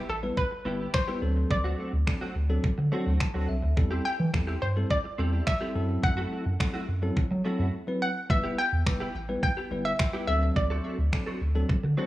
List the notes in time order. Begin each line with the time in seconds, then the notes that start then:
Already playing: E5
0.09 A1 A4, muted clean electric guitar stroke
0.23 G3 B3 E4 B4, muted clean electric guitar stroke
0.37 B4, muted clean electric guitar stroke, kick
0.51 muted clean electric guitar stroke
0.65 G1 G3 B3 E4 G4 B4
0.80 B3 E4 G4
0.94 C5, finger snap, muted clean electric guitar stroke, kick
1.08 G3 B3 E4 G4 B4
1.22 D2 F#3 C4 D4 A4, muted clean electric guitar stroke
1.36 muted clean electric guitar stroke
1.50 D2 D5, muted clean electric guitar stroke, kick
1.64 A3 C4 F#4
1.78 A3 C4 F#4
1.93 D2, muted clean electric guitar stroke
2.07 F#3 C4 D4 A4, finger snap, muted clean electric guitar stroke, kick
2.21 A3 C4 F#4
2.35 D2, muted clean electric guitar stroke
2.49 F#3 C4 D4 A4, muted clean electric guitar stroke
2.64 D3, muted clean electric guitar stroke, kick
2.78 D3, muted clean electric guitar stroke
2.92 F#3 A3 C4 D4 F#4 A4
3.06 D2 A3 C4 F#4
3.20 A5, finger snap, muted clean electric guitar stroke, kick
3.34 D2 F#3 A3 C4 D4 F#4 A4
3.48 C2 E5, muted clean electric guitar stroke
3.62 D2, muted clean electric guitar stroke
3.77 E2 G3 C4 E4 A4, muted clean electric guitar stroke, kick
3.91 C4 E4 G4
4.05 C4 E4 G4 G5
4.19 E3, muted clean electric guitar stroke
4.33 E2 G3 C4 E4 A4, finger snap, muted clean electric guitar stroke, kick
4.47 C4 E4 G4
4.62 G2 C5, muted clean electric guitar stroke
4.76 G3 C4 E4 A4, muted clean electric guitar stroke
4.90 D5, muted clean electric guitar stroke, kick
5.04 muted clean electric guitar stroke
5.18 E2 G3 C4 E4 G4 A4
5.32 C4 E4 G4
5.47 E5, finger snap, muted clean electric guitar stroke, kick
5.61 G3 C4 E4 G4 A4
5.75 F#2 F#3 C4 E4 A4, muted clean electric guitar stroke
5.89 muted clean electric guitar stroke
6.03 F#2 F#5, muted clean electric guitar stroke, kick
6.17 A3 E4 F#4
6.31 A3 E4 F#4
6.45 F#2, muted clean electric guitar stroke
6.60 F#3 C4 E4 A4, finger snap, muted clean electric guitar stroke, kick
6.74 A3 E4 F#4
6.88 F#2, muted clean electric guitar stroke
7.02 F#3 C4 E4 A4, muted clean electric guitar stroke
7.16 F#3, muted clean electric guitar stroke, kick
7.31 F#3, muted clean electric guitar stroke
7.45 F#3 A3 C4 E4 F#4 A4
7.59 F#2 A3 E4 F#4
7.87 F#3 C4 E4 B4
8.02 F#5
8.30 E1 G3 B3 E4 B4 E5, muted clean electric guitar stroke, kick
8.44 B3 E4 G4
8.58 B3 E4 G4 G5
8.73 E2
8.86 E1 G3 B3 E4 B4, finger snap, muted clean electric guitar stroke, kick
9.00 B3 E4 G4
9.15 A1, muted clean electric guitar stroke
9.29 G3 B3 E4 B4, muted clean electric guitar stroke
9.43 G5, muted clean electric guitar stroke, kick
9.57 B3 E4 G4
9.71 G1 G3 B3 E4 B4, muted clean electric guitar stroke
9.85 E5, muted clean electric guitar stroke
9.99 finger snap, muted clean electric guitar stroke, kick
10.14 G3 B3 E4 G4 B4
10.28 D2 F#3 C4 D4 A4 E5, muted clean electric guitar stroke
10.42 muted clean electric guitar stroke
10.56 D2 D5, muted clean electric guitar stroke, kick
10.70 C4 F#4 A4
10.84 C4 F#4 A4
10.98 D2, muted clean electric guitar stroke
11.13 F#3 C4 D4 A4, finger snap, muted clean electric guitar stroke, kick
11.26 C4 F#4 A4
11.41 D2, muted clean electric guitar stroke
11.55 F#3 C4 D4 A4, muted clean electric guitar stroke
11.69 D3, muted clean electric guitar stroke, kick
11.83 D3, muted clean electric guitar stroke
11.97 F#3 C4 D4 F#4 A4 C5